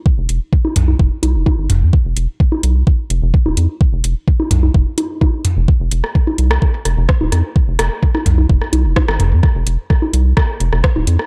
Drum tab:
HH |--x---x---x---x-|--x---x---x---x-|--x---x---x---x-|--x---x---x---x-|
SD |----------------|----------------|----------------|---r---r--r-r-r-|
T2 |------o-------o-|----------------|------o-------o-|----------------|
CG |-----o-o--o-o---|-----o-------o--|-----o-o--o-o---|-----o-------o--|
BD |o---o---o---o---|o---o---o---o---|o---o---o---o---|o---o---o---o---|

HH |--x---x---x---x-|--x---x---x---x-|
SD |--r--r---r--rr--|r---r---r--rr--r|
T2 |------o-------o-|----------------|
CG |-----o-o--o-o---|-----o-------o--|
BD |o---o---o---o---|o---o---o---o---|